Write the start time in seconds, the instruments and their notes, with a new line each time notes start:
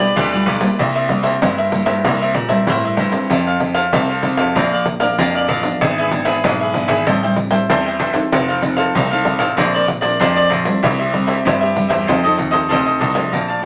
Already playing: nylon-string guitar B2, cavaquinho D5
0.00 nylon-string guitar G3 D4 F4, cavaquinho G4 B4
0.16 grand piano D2, nylon-string guitar B2, cavaquinho F4 G4 B4 D5, pandeiro
0.32 nylon-string guitar G3 D4 F4, cavaquinho G4 B4 D5, pandeiro
0.46 grand piano B1, cavaquinho F4 G4 B4 D5, pandeiro
0.61 nylon-string guitar G3 A#3 E4, pandeiro
0.79 grand piano C2, nylon-string guitar C3, cavaquinho E4 A#4 C5 E5, pandeiro
0.95 cavaquinho A#4 C5 E5, pandeiro
1.09 nylon-string guitar G3 A#3 E4, muted cavaquinho stroke, pandeiro
1.23 cavaquinho A#4 C5 E5, pandeiro
1.42 grand piano G2, nylon-string guitar G2, cavaquinho E4 A#4 C5 E5, pandeiro
1.58 cavaquinho A#4 C5 E5, pandeiro
1.72 nylon-string guitar G3 A#3 E4, pandeiro
1.86 grand piano G2, cavaquinho A#4 C5 E5, pandeiro
2.05 grand piano C2, nylon-string guitar C3 G3 A#3 E4, cavaquinho E4 A#4 C5 E5, pandeiro
2.21 cavaquinho A#4 C5 E5, pandeiro
2.34 grand piano A#2, muted cavaquinho stroke, pandeiro
2.49 nylon-string guitar G3 E4, cavaquinho A#4 C5 E5, pandeiro
2.67 nylon-string guitar G2, grand piano A2, cavaquinho E4 A#4 C5 E5, pandeiro
2.84 cavaquinho A#4 C5 E5, pandeiro
2.97 grand piano G2, cavaquinho E4 A#4 C5 E5, pandeiro
3.12 nylon-string guitar C4 E4 A4, pandeiro
3.30 grand piano F2, nylon-string guitar F3, cavaquinho E4 A4 C5 F5, pandeiro
3.47 cavaquinho A4 C5 F5, pandeiro
3.60 nylon-string guitar C4 E4 A4, muted cavaquinho stroke, pandeiro
3.74 cavaquinho A4 C5 F5, pandeiro
3.93 grand piano C2, nylon-string guitar C3 C4 E4 A4, cavaquinho E4 A4 C5 F5, pandeiro
4.09 cavaquinho A4 C5 F5, pandeiro
4.23 nylon-string guitar C4 E4 A4, pandeiro
4.37 grand piano F2, cavaquinho A4 C5 F5, pandeiro
4.56 grand piano A#1, nylon-string guitar A#2 F3 A#3 D4, cavaquinho D4 A#4 D5 F5, pandeiro
4.72 cavaquinho A#4 D5 F5, pandeiro
4.86 muted cavaquinho stroke, pandeiro
5.00 nylon-string guitar F3 A#3 D4, cavaquinho A#4 D5 F5, pandeiro
5.18 grand piano F2, nylon-string guitar F3, cavaquinho D4 A#4 D5 F5, pandeiro
5.35 cavaquinho A#4 D5 F5, pandeiro
5.48 grand piano A1, cavaquinho D4 A#4 D5 F5, pandeiro
5.63 nylon-string guitar E3 B3 D4, pandeiro
5.81 grand piano G#1, nylon-string guitar G#2, cavaquinho D4 G#4 B4 E5, pandeiro
5.98 cavaquinho G#4 B4 E5, pandeiro
6.11 nylon-string guitar E3 B3 D4, muted cavaquinho stroke, pandeiro
6.25 cavaquinho G#4 B4 E5, pandeiro
6.44 grand piano B1, nylon-string guitar G#2, cavaquinho D4 G#4 B4 E5, pandeiro
6.60 cavaquinho G#4 B4 E5, pandeiro
6.74 nylon-string guitar E3 B3 D4, pandeiro
6.88 grand piano G#1, cavaquinho G#4 B4 E5, pandeiro
7.06 grand piano A1, nylon-string guitar A2 G3 C4 E4, cavaquinho A4 C5 E5 G5, pandeiro
7.23 nylon-string guitar G3 C4 E4, cavaquinho C5 E5 G5, pandeiro
7.36 muted cavaquinho stroke, pandeiro
7.51 nylon-string guitar G3 C4 E4, cavaquinho C5 E5 G5, pandeiro
7.69 grand piano E2, nylon-string guitar E3, cavaquinho A4 C5 E5 G5, pandeiro
7.86 cavaquinho C5 E5 G5, pandeiro
7.99 grand piano G1, cavaquinho A4 C5 E5 G5, pandeiro
8.14 nylon-string guitar C4 D#4 A4, pandeiro
8.32 grand piano F1, nylon-string guitar F3, cavaquinho D#4 A4 C5 F5, pandeiro
8.49 cavaquinho A4 C5 F5, pandeiro
8.62 nylon-string guitar C4 D#4 A4, muted cavaquinho stroke, pandeiro
8.77 cavaquinho A4 C5 F5, pandeiro
8.95 grand piano C2, nylon-string guitar C3, cavaquinho D#4 A4 C5 F5, pandeiro
9.11 nylon-string guitar C4 D#4 A4, cavaquinho A4 C5 F5, pandeiro
9.25 nylon-string guitar C4 D#4 A4, pandeiro
9.39 grand piano A1, cavaquinho A4 C5 F5, pandeiro
9.57 grand piano A#1, nylon-string guitar A#2 F3 C4 D4, cavaquinho D4 A#4 C5 D5, pandeiro
9.74 cavaquinho A#4 C5 D5, pandeiro
9.87 muted cavaquinho stroke, pandeiro
10.01 nylon-string guitar F3 C4 D4, cavaquinho A#4 C5 D5, pandeiro
10.20 grand piano F2, nylon-string guitar F3, cavaquinho D4 A#4 C5 D5, pandeiro
10.36 cavaquinho A#4 C5 D5, pandeiro
10.49 grand piano A#1, cavaquinho D4 A#4 C5 D5, pandeiro
10.65 nylon-string guitar G3 C4 E4, pandeiro
10.83 grand piano C2, nylon-string guitar C3, cavaquinho E4 G4 C5 E5, pandeiro
10.99 cavaquinho G4 C5 E5, pandeiro
11.13 nylon-string guitar G3 C4 E4, muted cavaquinho stroke, pandeiro
11.27 cavaquinho G4 C5 E5, pandeiro
11.45 grand piano G2, nylon-string guitar G2, cavaquinho E4 G4 C5 E5, pandeiro
11.61 cavaquinho G4 C5 E5, pandeiro
11.75 nylon-string guitar G3 C4 E4, pandeiro
11.88 grand piano E2, cavaquinho G4 C5 E5, pandeiro
12.07 grand piano F2, nylon-string guitar F3 C4 D#4 A4, cavaquinho F4 A4 C5 D#5, pandeiro
12.24 nylon-string guitar C4 D#4 A4, cavaquinho A4 C5 D#5, pandeiro
12.37 grand piano D#2, muted cavaquinho stroke, pandeiro
12.51 nylon-string guitar C4 D#4 A4, cavaquinho A4 C5 D#5, pandeiro
12.69 grand piano D2, nylon-string guitar C3, cavaquinho F4 A4 C5 D#5, pandeiro
12.86 cavaquinho A4 C5 D#5, pandeiro
12.99 grand piano C2, cavaquinho F4 A4 C5 D#5, pandeiro
13.14 nylon-string guitar F3 A3 D4, pandeiro
13.32 grand piano A#1, nylon-string guitar A#2, cavaquinho A#4 D5 F5 A5, pandeiro
13.48 cavaquinho D5 F5 A5, pandeiro
13.62 muted cavaquinho stroke